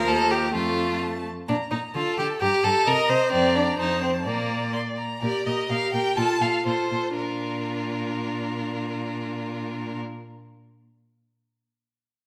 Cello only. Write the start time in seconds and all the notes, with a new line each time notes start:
0.08 D#2
0.54 F2
1.49 A#2
1.72 A#2
1.95 D3
2.18 D3
2.42 G2
2.65 G2
2.88 C3
3.10 C3
3.33 F2
3.80 F2
4.27 A#2
5.23 A#2
5.46 A#2
5.70 A#2
5.94 A#2
6.18 A#2
6.41 A#2
6.66 A#2
6.92 A#2
7.18 A#2